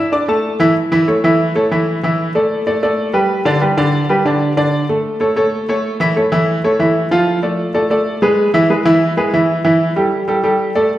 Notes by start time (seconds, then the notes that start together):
0.12 D4 D5 D6
0.28 A3 A4 A5
0.60 E3 E4 E5
0.92 E3 E4 E5
1.08 A3 A4 C#5
1.24 E3 E4 E5
1.55 A3 A4 C#5
1.71 E3 E4 E5
2.03 E3 E4 E5
2.35 A3 A4 D5
2.67 A3 A4 D5
2.83 A3 A4 D5
3.13 G3 G4 B4
3.45 D3 D4 D5
3.61 G3 G4 B4
3.77 D3 D4 D5
4.09 G3 G4 B4
4.25 D3 D4 D5
4.57 D3 D4 D5
4.89 A3 A4
5.20 A3 A4 C#5
5.36 A3 A4 C#5
5.69 A3 A4 C#5
6.00 E3 E4 E5
6.16 A3 A4 C#5
6.32 E3 E4 E5
6.64 A3 A4 C#5
6.79 E3 E4 E5
7.11 F3 F4 F5
7.43 A3 A4 D5
7.74 A3 A4 D5
7.90 A3 A4 D5
8.22 G#3 G#4 B4
8.54 E3 E4 E5
8.70 G#3 G#4 B4
8.85 E3 E4 E5
9.17 G#3 G#4 B4
9.33 E3 E4 E5
9.65 E3 E4 E5
9.96 G3 G4 A4
10.28 G3 G4 A4
10.44 G3 G4 A4
10.75 A3 A4 D5